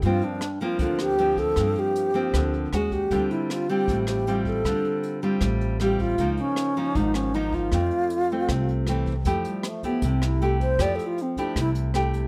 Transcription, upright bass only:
X:1
M:4/4
L:1/8
Q:1/4=156
K:F
V:1 name="Upright bass" clef=bass
G,, z3 D,,4 | G,, z3 D,,2 _E,,2 | D,, z3 A,,,4 | D,, z3 A,,,4 |
_D,, z3 _A,,,4 | F,, z3 C,,4 | F,, z3 C,,4 | F,, z3 C,,4 |]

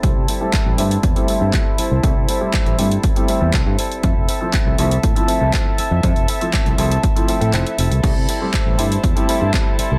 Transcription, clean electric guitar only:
X:1
M:4/4
L:1/16
Q:1/4=120
K:C
V:1 name="Clean electric guitar"
[G,CEA]2 [G,CEA] [CEA] [G,CEA]2 [G,CEA]3 [CEA] [G,CEA] [CEA] [G,CEA]2 [G,CEA]2 | [G,CEA]2 [G,CEA] [CEA] [G,CE]2 [G,CEA]3 [CEA] [G,CEA] [CEA] [G,CEA]2 [G,CEA]2 | [CEA]2 [CEA] [EA] [CEA]2 [CEA]3 [EA] [CEA] [EA] [CEA]2 [CEA]2 | [CEA]2 [CEA] [EA] [CEA]2 [CEA]3 [EA] [CEA] [EA] [CEA]2 [CEA] [EA] |
[G,CEA]2 [G,CEA] [CEA] [G,CEA]2 [G,CEA]3 [CEA] [G,CEA] [CEA] [G,CA]2 [G,CEA] [CEA] |]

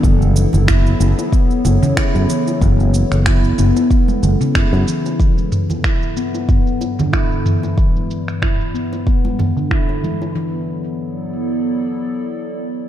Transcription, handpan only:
X:1
M:4/4
L:1/16
Q:"Swing 16ths" 1/4=93
K:Edor
V:1 name="Handpan"
E, z3 E z B, z B, z2 C, E z E, z | E, z3 E z B, z B, z2 C, E z E, z | E, z3 E z B, z B, z2 D, E z E, z | E, z3 E z B, z B, z2 D, E z E, z |
E,2 z12 z2 |]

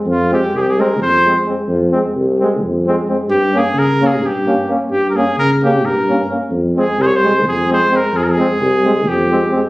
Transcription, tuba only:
X:1
M:7/8
L:1/8
Q:1/4=130
K:Fm
V:1 name="Tuba" clef=bass
F,,2 C,,2 F,,3 | F,,2 C,,2 F,,3 | G,,2 D,2 G,,3 | G,,2 D,2 G,,3 |
F,,2 C,,2 F,,3 | F,,2 C,,2 F,,3 |]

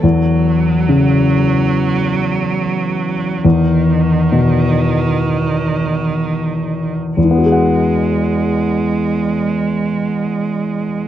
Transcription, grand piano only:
X:1
M:4/4
L:1/8
Q:1/4=66
K:E
V:1 name="Grand piano" clef=bass
E,,2 C,6 | E,,2 B,,6 | [E,,E,B,FGf]8 |]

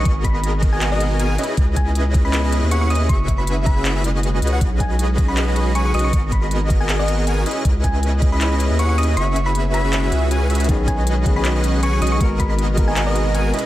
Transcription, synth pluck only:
X:1
M:4/4
L:1/16
Q:"Swing 16ths" 1/4=158
K:G#m
V:1 name="Synth pluck"
c' z b b z3 g g d3 z4 | z2 g z4 b4- b c' c' d' z | c'3 b z2 b3 z6 z | z2 g z4 b4- b c' c' d' c' |
c' z b b z3 g g d3 z4 | z2 g z4 b4- b c' c' d' z | c'3 b z2 b3 z6 z | z2 g z4 b4- b c' c' d' c' |
c' z b b z3 g g d3 z4 |]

